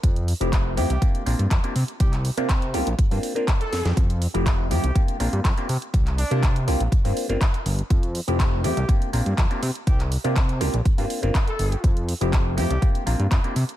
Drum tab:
HH |xxoxx-oxxxoxxxox|xxoxxxoxxooxxxox|xxoxx-oxxxoxxxox|xxoxxxoxxooxxxox|
CP |----x-------x---|-x--x-------x---|----x-------x---|-x--x-------x---|
SD |----------------|--------------oo|----------------|----------------|
BD |o---o---o---o---|o---o---o---o---|o---o---o---o---|o---o---o---o---|

HH |xxoxx-oxxxoxxxox|xxoxxxoxxooxxxox|xxoxx-oxxxoxxxox|
CP |----x-------x---|-x--x-------x---|----x-------x---|
SD |----------------|----------------|----------------|
BD |o---o---o---o---|o---o---o---o---|o---o---o---o---|